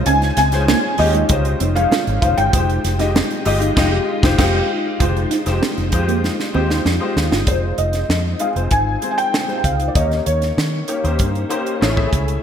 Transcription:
Already playing: grand piano G#3 C#4 D#4 F4 C5
0.06 fingered electric bass C#2, clean electric guitar C#4, felt piano G#5, closed hi-hat
0.22 muted clean electric guitar stroke, snare, closed hi-hat
0.37 fingered electric bass C#2, clean electric guitar C4, felt piano G#5, snare, closed hi-hat, muted conga
0.52 grand piano G#3 C#4 D#4 F4 C5, snare, closed hi-hat
0.68 clean electric guitar A#3, snare, high conga
0.84 muted clean electric guitar stroke
0.98 fingered electric bass D#2, grand piano G#3 C#4 D#4 F4 G4, felt piano D#5, open hi-hat
1.15 clean electric guitar G#3, closed hi-hat
1.29 fingered electric bass C#2, grand piano G#3 C#4 D#4 F4 C5, muted clean electric guitar stroke, kick, closed hi-hat, muted conga
1.45 closed hi-hat
1.60 fingered electric bass F1, clean electric guitar C4, closed hi-hat, muted conga
1.75 grand piano G#3 C#4 D#4 F4 C#5, clean electric guitar D#4, felt piano F5, closed hi-hat
1.91 clean electric guitar F4, snare, high conga
2.07 fingered electric bass G#1, closed hi-hat
2.22 fingered electric bass F1, grand piano G#3 C#4 D#4 F4 C5, felt piano F5, muted clean electric guitar stroke, kick, closed hi-hat
2.38 fingered electric bass G1, clean electric guitar F4, felt piano G5, closed hi-hat, high conga
2.53 fingered electric bass F1, grand piano G#3 D#4 F4 G4 C5, clean electric guitar F4, kick, closed hi-hat
2.69 closed hi-hat
2.84 fingered electric bass F1, muted clean electric guitar stroke, snare, closed hi-hat, muted conga
2.99 grand piano G#3 D#4 F4 G4 D#5, clean electric guitar D#4, snare, closed hi-hat
3.15 clean electric guitar C4, snare, high conga
3.30 muted clean electric guitar stroke, closed hi-hat
3.45 fingered electric bass G1, grand piano G#3 D#4 F4 G4 D#5, open hi-hat
3.61 clean electric guitar D#4, closed hi-hat
3.76 fingered electric bass F1, grand piano G#3 D#4 F4 G4 D#5, kick, snare, crash
4.22 fingered electric bass F1, grand piano G#3 D#4 F4 G4 C5, kick, snare
4.38 fingered electric bass F1, grand piano G#3 D#4 F4 G4 C5, kick, snare, crash
4.99 fingered electric bass F1, grand piano G#3 D#4 F4 G4 C5, clean electric guitar F4, kick, closed hi-hat
5.15 muted clean electric guitar stroke, closed hi-hat
5.31 clean electric guitar D#4, snare, closed hi-hat, muted conga
5.46 fingered electric bass F1, grand piano G#3 D#4 F4 G4 C5, snare, closed hi-hat
5.62 clean electric guitar C4, snare, high conga
5.77 fingered electric bass F1, muted clean electric guitar stroke, closed hi-hat
5.92 fingered electric bass F2, grand piano G#3 D#4 F4 G4 C5, kick, closed hi-hat
6.08 clean electric guitar A#3, closed hi-hat
6.24 muted clean electric guitar stroke, snare, muted conga
6.40 snare
6.54 fingered electric bass D#2, grand piano G#3 D#4 F4 G4 C5, clean electric guitar C4, muted conga
6.70 clean electric guitar D#4, snare
6.85 fingered electric bass F2, clean electric guitar F4, snare, high conga
7.00 grand piano G#3 D#4 F4 G4 C5
7.16 fingered electric bass D#2, muted clean electric guitar stroke, snare
7.32 fingered electric bass G1, clean electric guitar F4, snare, high conga
7.47 fingered electric bass F1, grand piano G#3 C4 D#4 F4 C5, felt piano C5, kick, closed hi-hat
7.78 fingered electric bass F1, felt piano D#5, closed hi-hat
7.93 snare, closed hi-hat
8.09 fingered electric bass F2, snare
8.39 grand piano G#3 C4 D#4 F4 G#4, felt piano F5, closed hi-hat
8.55 fingered electric bass F1, grand piano G#3 C4 D#4 F4 C5, closed hi-hat
8.71 fingered electric bass G#1, felt piano G#5, kick, closed hi-hat
9.02 grand piano G#3 C4 D#4 F4 C5, closed hi-hat
9.11 felt piano G#5
9.18 felt piano G5, closed hi-hat
9.34 snare
9.48 grand piano G#3 C4 D#4 F4 C5, closed hi-hat
9.58 felt piano G5
9.64 fingered electric bass C#2, felt piano F5, kick, closed hi-hat
9.80 closed hi-hat
9.88 felt piano D5
9.94 fingered electric bass D#2, grand piano A#3 C#4 D#4 G4 C#5, felt piano D#5, kick, closed hi-hat
10.11 snare, closed hi-hat
10.26 fingered electric bass D#2, felt piano C#5, closed hi-hat
10.42 snare, closed hi-hat
10.58 fingered electric bass D#3, snare
10.88 grand piano A#3 C#4 D#4 G4 C#5, closed hi-hat
11.03 fingered electric bass D#2, grand piano A#3 C#4 D#4 G4 C5, closed hi-hat
11.19 fingered electric bass G2, kick, closed hi-hat
11.35 closed hi-hat
11.49 grand piano A#3 C#4 D#4 G4 C5, closed hi-hat
11.66 closed hi-hat
11.81 fingered electric bass A1, grand piano A3 C#4 E4 G#4 C#5, snare
11.96 grand piano A3 C#4 E4 G#4 E5, kick
12.13 fingered electric bass C#2, kick, closed hi-hat
12.28 closed hi-hat

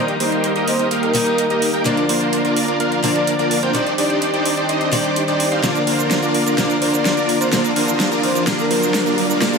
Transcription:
Already playing: steel-string acoustic guitar D#3 G3 A#3 D#4, analog synth pad G3 D#4 A#4 D#5, supersaw synth A#3 D#4 G4 A#4 D#5
0.08 closed hi-hat
0.20 supersaw synth A#3 D#4 G4 A#4 C5, open hi-hat
0.32 closed hi-hat
0.44 closed hi-hat
0.56 supersaw synth A#3 D#4 G4 A#4 D#5, closed hi-hat
0.67 soft synth lead C5, open hi-hat
0.79 supersaw synth A#3 D#4 G4 A#4 D#5, closed hi-hat
0.91 supersaw synth A#3 D#4 G4 A#4 F5, closed hi-hat
1.03 soft synth lead A#4, closed hi-hat
1.13 steel-string acoustic guitar D#3 G3 A#3 D#4, supersaw synth A#3 D#4 G4 A#4 D#5, open hi-hat
1.27 closed hi-hat
1.38 closed hi-hat
1.50 supersaw synth A#3 D#4 G4 A#4 D#5, closed hi-hat
1.62 open hi-hat
1.74 supersaw synth A#3 D#4 G4 A#4 G5, closed hi-hat
1.84 steel-string acoustic guitar D3 F3 A#3 D4, analog synth pad F3 D4 D5, supersaw synth A#3 D4 F4 A#4 D5, closed hi-hat
1.97 closed hi-hat
2.09 supersaw synth A#3 D4 F4 A#4 C5, open hi-hat
2.21 closed hi-hat
2.33 closed hi-hat
2.45 supersaw synth A#3 D4 F4 A#4 D5, closed hi-hat
2.56 open hi-hat
2.68 supersaw synth A#3 D4 F4 A#4 D5, closed hi-hat
2.80 supersaw synth A#3 D4 F4 A#4 F5, closed hi-hat
2.92 closed hi-hat
3.03 steel-string acoustic guitar D3 F3 A#3 D4, supersaw synth A#3 D4 F4 A#4 D5, open hi-hat
3.15 soft synth lead D5, closed hi-hat
3.27 closed hi-hat
3.39 supersaw synth A#3 D4 F4 A#4 D5, closed hi-hat
3.51 open hi-hat
3.63 supersaw synth A#3 D4 F4 A#4 G5, soft synth lead C5, closed hi-hat
3.73 steel-string acoustic guitar D#3 G3 C4 D5, analog synth pad D#3 C4 G4 D5, supersaw synth D4 D#4 G4 C5 D5, soft synth lead C5, closed hi-hat
3.87 closed hi-hat
3.98 supersaw synth D4 D#4 G4 C5 D5, soft synth lead D5, open hi-hat
4.10 soft synth lead D5, closed hi-hat
4.22 closed hi-hat
4.34 supersaw synth D4 D#4 G4 C5 D5, closed hi-hat
4.45 open hi-hat
4.57 supersaw synth D4 D#4 G4 C5 D5, closed hi-hat
4.69 supersaw synth D4 D#4 G4 C5 D#5, closed hi-hat
4.81 closed hi-hat
4.92 steel-string acoustic guitar D#3 G3 C4 D5, supersaw synth D4 D#4 G4 C5 D5, open hi-hat
5.04 closed hi-hat
5.16 closed hi-hat
5.28 supersaw synth D4 D#4 G4 C5 D5, closed hi-hat
5.40 open hi-hat
5.52 supersaw synth D4 D#4 G4 C5 F5, closed hi-hat
5.62 steel-string acoustic guitar D3 F3 A#3 D4, analog synth pad D3 A#3 F4, supersaw synth A#3 D4 F4 D5, snare, closed hi-hat, riser, shaker
5.75 closed hi-hat, shaker
5.87 supersaw synth A#3 D4 F4 A#4 C5, open hi-hat
5.99 closed hi-hat, shaker
6.11 snare, closed hi-hat, shaker
6.23 supersaw synth A#3 D4 F4 A#4 D5, closed hi-hat, shaker
6.34 open hi-hat
6.46 supersaw synth A#3 D4 F4 A#4 D5, closed hi-hat, shaker
6.57 steel-string acoustic guitar D3 F3 A#3 D4, supersaw synth A#3 D4 F4 A#4 D5, snare, closed hi-hat, shaker
6.70 closed hi-hat, shaker
6.82 supersaw synth A#3 D4 F4 A#4 C5, open hi-hat
6.93 soft synth lead D5, closed hi-hat, shaker
7.05 snare, closed hi-hat, shaker
7.17 supersaw synth A#3 D4 F4 A#4 D5, closed hi-hat, shaker
7.29 open hi-hat
7.41 supersaw synth A#3 D4 F4 A#4 D5, soft synth lead C5, closed hi-hat, shaker
7.51 steel-string acoustic guitar D3 F3 A#3 D4, analog synth pad A#3 G4 D#6, supersaw synth A#3 D4 F4 A#4 D5, soft synth lead C5, snare, closed hi-hat, shaker
7.64 closed hi-hat, shaker
7.76 supersaw synth A#3 D4 F4 A#4 C5, open hi-hat
7.88 closed hi-hat, shaker
8.00 snare, closed hi-hat, shaker
8.12 supersaw synth A#3 D4 F4 A#4 D5, closed hi-hat, shaker
8.23 soft synth lead C5, open hi-hat
8.35 supersaw synth A#3 D4 F4 A#4 D5, closed hi-hat, shaker
8.46 steel-string acoustic guitar D3 F3 A#3 D4, supersaw synth A#3 D4 F4 A#4 D5, snare, closed hi-hat, shaker
8.59 soft synth lead A#4, closed hi-hat, shaker
8.71 supersaw synth A#3 D4 F4 A#4 C5, open hi-hat
8.82 closed hi-hat, shaker
8.94 snare, closed hi-hat, shaker
9.06 supersaw synth A#3 D4 F4 A#4 D5, closed hi-hat, shaker
9.18 open hi-hat
9.30 supersaw synth A#3 D4 F4 A#4 D5, closed hi-hat, shaker
9.40 steel-string acoustic guitar D3 F3 A#3 D4, analog synth pad D3 A#3 F4 D5, supersaw synth A#3 D4 F4 A#4 D5, snare, closed hi-hat, shaker
9.53 closed hi-hat, shaker

